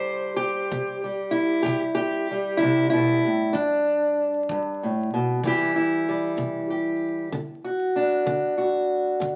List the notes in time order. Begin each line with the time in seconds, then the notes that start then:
Already playing: C3 G3 G4 C5
0.36 G4
0.71 C3, kick
1.04 G3
1.31 E4
1.62 C3 G4, kick
1.95 G4
2.31 G3
2.57 E4, kick
2.62 C3
2.90 B2 E4
3.25 A2
3.53 G2 D4, kick
4.49 G2, kick
4.83 A2
5.14 B2
5.43 C3 E3 G3 E4 G4, kick
5.76 E4
6.08 G3
6.37 C3, kick
6.70 G4
7.32 D3, kick
7.64 F#4
7.96 D4
8.26 D3, kick
8.58 F#4
9.20 D3, kick